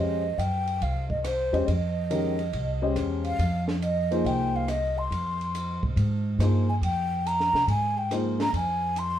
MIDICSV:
0, 0, Header, 1, 5, 480
1, 0, Start_track
1, 0, Key_signature, -4, "minor"
1, 0, Tempo, 429492
1, 1875, Time_signature, 4, 2, 24, 8
1, 10273, End_track
2, 0, Start_track
2, 0, Title_t, "Flute"
2, 0, Program_c, 0, 73
2, 0, Note_on_c, 0, 75, 68
2, 431, Note_on_c, 0, 79, 77
2, 448, Note_off_c, 0, 75, 0
2, 924, Note_on_c, 0, 77, 68
2, 940, Note_off_c, 0, 79, 0
2, 1219, Note_off_c, 0, 77, 0
2, 1226, Note_on_c, 0, 75, 60
2, 1379, Note_off_c, 0, 75, 0
2, 1392, Note_on_c, 0, 72, 74
2, 1860, Note_on_c, 0, 75, 75
2, 1876, Note_off_c, 0, 72, 0
2, 3307, Note_off_c, 0, 75, 0
2, 3625, Note_on_c, 0, 77, 86
2, 4075, Note_off_c, 0, 77, 0
2, 4277, Note_on_c, 0, 75, 83
2, 4766, Note_on_c, 0, 79, 76
2, 4782, Note_off_c, 0, 75, 0
2, 5096, Note_on_c, 0, 77, 71
2, 5113, Note_off_c, 0, 79, 0
2, 5245, Note_on_c, 0, 75, 79
2, 5262, Note_off_c, 0, 77, 0
2, 5569, Note_on_c, 0, 84, 76
2, 5586, Note_off_c, 0, 75, 0
2, 6521, Note_off_c, 0, 84, 0
2, 7480, Note_on_c, 0, 80, 75
2, 7547, Note_off_c, 0, 80, 0
2, 7640, Note_on_c, 0, 79, 81
2, 8124, Note_on_c, 0, 82, 88
2, 8141, Note_off_c, 0, 79, 0
2, 8598, Note_off_c, 0, 82, 0
2, 8604, Note_on_c, 0, 80, 82
2, 8917, Note_on_c, 0, 79, 75
2, 8934, Note_off_c, 0, 80, 0
2, 9075, Note_off_c, 0, 79, 0
2, 9410, Note_on_c, 0, 82, 85
2, 9551, Note_off_c, 0, 82, 0
2, 9569, Note_on_c, 0, 80, 80
2, 10047, Note_on_c, 0, 84, 87
2, 10064, Note_off_c, 0, 80, 0
2, 10273, Note_off_c, 0, 84, 0
2, 10273, End_track
3, 0, Start_track
3, 0, Title_t, "Grand piano"
3, 0, Program_c, 1, 0
3, 0, Note_on_c, 1, 56, 48
3, 0, Note_on_c, 1, 61, 44
3, 0, Note_on_c, 1, 67, 41
3, 0, Note_on_c, 1, 72, 42
3, 0, Note_on_c, 1, 75, 51
3, 235, Note_off_c, 1, 61, 0
3, 236, Note_off_c, 1, 56, 0
3, 237, Note_off_c, 1, 72, 0
3, 237, Note_off_c, 1, 75, 0
3, 239, Note_off_c, 1, 67, 0
3, 1707, Note_on_c, 1, 56, 52
3, 1709, Note_on_c, 1, 72, 50
3, 1710, Note_on_c, 1, 61, 47
3, 1712, Note_on_c, 1, 67, 52
3, 1713, Note_on_c, 1, 75, 62
3, 1856, Note_off_c, 1, 56, 0
3, 1857, Note_off_c, 1, 61, 0
3, 1857, Note_off_c, 1, 72, 0
3, 1858, Note_off_c, 1, 67, 0
3, 1858, Note_off_c, 1, 75, 0
3, 2350, Note_on_c, 1, 51, 49
3, 2351, Note_on_c, 1, 67, 41
3, 2353, Note_on_c, 1, 61, 44
3, 2354, Note_on_c, 1, 56, 42
3, 2356, Note_on_c, 1, 70, 54
3, 2640, Note_off_c, 1, 51, 0
3, 2640, Note_off_c, 1, 67, 0
3, 2641, Note_off_c, 1, 56, 0
3, 2641, Note_off_c, 1, 61, 0
3, 2643, Note_off_c, 1, 70, 0
3, 3151, Note_on_c, 1, 61, 50
3, 3152, Note_on_c, 1, 56, 57
3, 3155, Note_on_c, 1, 67, 52
3, 3155, Note_on_c, 1, 72, 50
3, 3158, Note_on_c, 1, 75, 63
3, 3761, Note_off_c, 1, 61, 0
3, 3762, Note_off_c, 1, 56, 0
3, 3763, Note_off_c, 1, 67, 0
3, 3763, Note_off_c, 1, 72, 0
3, 3765, Note_off_c, 1, 75, 0
3, 4592, Note_on_c, 1, 58, 48
3, 4596, Note_on_c, 1, 68, 53
3, 4597, Note_on_c, 1, 53, 58
3, 4597, Note_on_c, 1, 63, 52
3, 4599, Note_on_c, 1, 72, 62
3, 5202, Note_off_c, 1, 58, 0
3, 5203, Note_off_c, 1, 68, 0
3, 5204, Note_off_c, 1, 53, 0
3, 5204, Note_off_c, 1, 63, 0
3, 5205, Note_off_c, 1, 72, 0
3, 7151, Note_on_c, 1, 58, 44
3, 7154, Note_on_c, 1, 53, 49
3, 7154, Note_on_c, 1, 68, 46
3, 7157, Note_on_c, 1, 63, 44
3, 7159, Note_on_c, 1, 72, 57
3, 7439, Note_off_c, 1, 58, 0
3, 7441, Note_off_c, 1, 53, 0
3, 7441, Note_off_c, 1, 68, 0
3, 7442, Note_off_c, 1, 63, 0
3, 7443, Note_off_c, 1, 72, 0
3, 9073, Note_on_c, 1, 53, 49
3, 9073, Note_on_c, 1, 58, 45
3, 9075, Note_on_c, 1, 63, 45
3, 9078, Note_on_c, 1, 68, 43
3, 9080, Note_on_c, 1, 72, 53
3, 9360, Note_off_c, 1, 53, 0
3, 9360, Note_off_c, 1, 58, 0
3, 9361, Note_off_c, 1, 63, 0
3, 9362, Note_off_c, 1, 68, 0
3, 9363, Note_off_c, 1, 72, 0
3, 10273, End_track
4, 0, Start_track
4, 0, Title_t, "Upright bass"
4, 0, Program_c, 2, 32
4, 0, Note_on_c, 2, 41, 67
4, 396, Note_off_c, 2, 41, 0
4, 423, Note_on_c, 2, 42, 65
4, 875, Note_off_c, 2, 42, 0
4, 909, Note_on_c, 2, 36, 70
4, 1666, Note_off_c, 2, 36, 0
4, 1705, Note_on_c, 2, 40, 63
4, 1859, Note_off_c, 2, 40, 0
4, 1875, Note_on_c, 2, 41, 72
4, 2790, Note_off_c, 2, 41, 0
4, 2827, Note_on_c, 2, 36, 77
4, 3277, Note_off_c, 2, 36, 0
4, 3304, Note_on_c, 2, 40, 68
4, 3755, Note_off_c, 2, 40, 0
4, 3785, Note_on_c, 2, 41, 77
4, 4705, Note_off_c, 2, 41, 0
4, 4745, Note_on_c, 2, 36, 75
4, 5665, Note_off_c, 2, 36, 0
4, 5709, Note_on_c, 2, 41, 71
4, 6466, Note_off_c, 2, 41, 0
4, 6514, Note_on_c, 2, 48, 60
4, 6656, Note_off_c, 2, 48, 0
4, 6663, Note_on_c, 2, 44, 72
4, 7114, Note_off_c, 2, 44, 0
4, 7134, Note_on_c, 2, 43, 60
4, 7589, Note_off_c, 2, 43, 0
4, 7616, Note_on_c, 2, 41, 69
4, 8379, Note_off_c, 2, 41, 0
4, 8418, Note_on_c, 2, 48, 55
4, 8568, Note_off_c, 2, 48, 0
4, 8574, Note_on_c, 2, 44, 69
4, 9498, Note_off_c, 2, 44, 0
4, 9534, Note_on_c, 2, 41, 71
4, 10273, Note_off_c, 2, 41, 0
4, 10273, End_track
5, 0, Start_track
5, 0, Title_t, "Drums"
5, 439, Note_on_c, 9, 44, 43
5, 439, Note_on_c, 9, 51, 49
5, 551, Note_off_c, 9, 44, 0
5, 551, Note_off_c, 9, 51, 0
5, 753, Note_on_c, 9, 51, 35
5, 865, Note_off_c, 9, 51, 0
5, 912, Note_on_c, 9, 51, 45
5, 1024, Note_off_c, 9, 51, 0
5, 1228, Note_on_c, 9, 36, 53
5, 1340, Note_off_c, 9, 36, 0
5, 1391, Note_on_c, 9, 37, 51
5, 1391, Note_on_c, 9, 44, 51
5, 1391, Note_on_c, 9, 51, 59
5, 1503, Note_off_c, 9, 37, 0
5, 1503, Note_off_c, 9, 44, 0
5, 1503, Note_off_c, 9, 51, 0
5, 1719, Note_on_c, 9, 51, 38
5, 1831, Note_off_c, 9, 51, 0
5, 1876, Note_on_c, 9, 51, 53
5, 1988, Note_off_c, 9, 51, 0
5, 2354, Note_on_c, 9, 44, 46
5, 2354, Note_on_c, 9, 51, 53
5, 2466, Note_off_c, 9, 44, 0
5, 2466, Note_off_c, 9, 51, 0
5, 2668, Note_on_c, 9, 51, 36
5, 2780, Note_off_c, 9, 51, 0
5, 2831, Note_on_c, 9, 51, 50
5, 2942, Note_off_c, 9, 51, 0
5, 3307, Note_on_c, 9, 37, 47
5, 3307, Note_on_c, 9, 44, 43
5, 3307, Note_on_c, 9, 51, 51
5, 3419, Note_off_c, 9, 37, 0
5, 3419, Note_off_c, 9, 44, 0
5, 3419, Note_off_c, 9, 51, 0
5, 3626, Note_on_c, 9, 51, 36
5, 3738, Note_off_c, 9, 51, 0
5, 3791, Note_on_c, 9, 51, 50
5, 3903, Note_off_c, 9, 51, 0
5, 4110, Note_on_c, 9, 38, 40
5, 4222, Note_off_c, 9, 38, 0
5, 4272, Note_on_c, 9, 44, 47
5, 4272, Note_on_c, 9, 51, 51
5, 4384, Note_off_c, 9, 44, 0
5, 4384, Note_off_c, 9, 51, 0
5, 4599, Note_on_c, 9, 51, 37
5, 4711, Note_off_c, 9, 51, 0
5, 4764, Note_on_c, 9, 51, 49
5, 4876, Note_off_c, 9, 51, 0
5, 5233, Note_on_c, 9, 37, 54
5, 5233, Note_on_c, 9, 44, 46
5, 5233, Note_on_c, 9, 51, 54
5, 5344, Note_off_c, 9, 37, 0
5, 5344, Note_off_c, 9, 44, 0
5, 5344, Note_off_c, 9, 51, 0
5, 5724, Note_on_c, 9, 51, 49
5, 5835, Note_off_c, 9, 51, 0
5, 6045, Note_on_c, 9, 51, 34
5, 6157, Note_off_c, 9, 51, 0
5, 6199, Note_on_c, 9, 44, 43
5, 6199, Note_on_c, 9, 51, 53
5, 6311, Note_off_c, 9, 44, 0
5, 6311, Note_off_c, 9, 51, 0
5, 6515, Note_on_c, 9, 36, 51
5, 6627, Note_off_c, 9, 36, 0
5, 6673, Note_on_c, 9, 51, 52
5, 6785, Note_off_c, 9, 51, 0
5, 7155, Note_on_c, 9, 37, 53
5, 7155, Note_on_c, 9, 44, 49
5, 7155, Note_on_c, 9, 51, 53
5, 7266, Note_off_c, 9, 37, 0
5, 7266, Note_off_c, 9, 44, 0
5, 7266, Note_off_c, 9, 51, 0
5, 7633, Note_on_c, 9, 51, 53
5, 7745, Note_off_c, 9, 51, 0
5, 8119, Note_on_c, 9, 44, 44
5, 8119, Note_on_c, 9, 51, 49
5, 8230, Note_off_c, 9, 44, 0
5, 8230, Note_off_c, 9, 51, 0
5, 8272, Note_on_c, 9, 38, 25
5, 8384, Note_off_c, 9, 38, 0
5, 8437, Note_on_c, 9, 38, 34
5, 8548, Note_off_c, 9, 38, 0
5, 8586, Note_on_c, 9, 51, 51
5, 8698, Note_off_c, 9, 51, 0
5, 9064, Note_on_c, 9, 37, 55
5, 9064, Note_on_c, 9, 44, 40
5, 9064, Note_on_c, 9, 51, 51
5, 9176, Note_off_c, 9, 37, 0
5, 9176, Note_off_c, 9, 44, 0
5, 9176, Note_off_c, 9, 51, 0
5, 9387, Note_on_c, 9, 38, 49
5, 9387, Note_on_c, 9, 51, 38
5, 9499, Note_off_c, 9, 38, 0
5, 9499, Note_off_c, 9, 51, 0
5, 9542, Note_on_c, 9, 51, 50
5, 9653, Note_off_c, 9, 51, 0
5, 10015, Note_on_c, 9, 44, 49
5, 10015, Note_on_c, 9, 51, 52
5, 10127, Note_off_c, 9, 44, 0
5, 10127, Note_off_c, 9, 51, 0
5, 10273, End_track
0, 0, End_of_file